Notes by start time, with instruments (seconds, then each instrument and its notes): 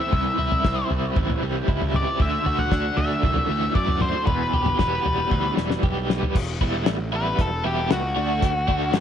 Already playing: overdriven electric guitar E3 A3 C4 E4, lead electric guitar E5
0.12 picked electric bass C2, overdriven electric guitar C3, kick, floor tom
0.38 picked electric bass C2, overdriven electric guitar E4, floor tom
0.52 floor tom
0.64 picked electric bass C2, overdriven electric guitar C4, kick, snare
0.90 picked electric bass C2, overdriven electric guitar G3, floor tom
1.16 picked electric bass A1, overdriven electric guitar E3, kick, floor tom
1.30 floor tom
1.42 picked electric bass C2, overdriven electric guitar G3
1.67 picked electric bass C#2, overdriven electric guitar E4, kick
1.82 floor tom
1.94 overdriven electric guitar C4, lead electric guitar D5, floor tom, mid tom
2.20 picked electric bass D2, overdriven electric guitar D3, lead electric guitar E5, kick, floor tom
2.45 picked electric bass D2, overdriven electric guitar F#4, floor tom
2.59 lead electric guitar F#5, floor tom
2.71 picked electric bass D2, overdriven electric guitar D4, kick, snare
2.97 picked electric bass D2, overdriven electric guitar A3, lead electric guitar E5, floor tom
3.23 picked electric bass C2, overdriven electric guitar E3, kick, floor tom
3.36 floor tom
3.49 picked electric bass D2, overdriven electric guitar A3
3.75 picked electric bass F#2, overdriven electric guitar F#4, lead electric guitar D5, kick
3.88 floor tom
4.01 overdriven electric guitar D4, lead electric guitar C5, floor tom, mid tom
4.26 picked electric bass E1, overdriven electric guitar E2, lead electric guitar B4, kick, floor tom
4.53 picked electric bass E1, overdriven electric guitar G4, floor tom
4.66 floor tom, mid tom
4.79 picked electric bass E1, overdriven electric guitar B3, lead electric guitar B4, kick, snare, mid tom
5.06 picked electric bass E1, overdriven electric guitar G3, floor tom
5.31 picked electric bass D2, overdriven electric guitar E3, kick, high tom
5.57 picked electric bass E1, overdriven electric guitar G3, snare
5.70 snare
5.83 picked electric bass B1, overdriven electric guitar G4, kick, mid tom
6.10 overdriven electric guitar B3, snare
6.23 floor tom
6.35 picked electric bass E1, kick, crash
6.61 picked electric bass E1, overdriven electric guitar E3 G3 B3 E4, kick
6.86 picked electric bass A1, snare, closed hi-hat
7.12 overdriven electric guitar E3 G3 B3 E4, lead electric guitar B4
7.39 picked electric bass E1, lead electric guitar A4, kick, closed hi-hat
7.64 picked electric bass E1, overdriven electric guitar E3 G3 B3 E4, lead electric guitar G4
7.90 picked electric bass C#2, lead electric guitar F#4, snare, closed hi-hat
8.16 picked electric bass D2, overdriven electric guitar D3 A3 D4 F#4
8.42 picked electric bass D2, kick, closed hi-hat
8.68 picked electric bass D2, overdriven electric guitar D3 A3 D4 F#4, kick
8.93 picked electric bass G2, snare, closed hi-hat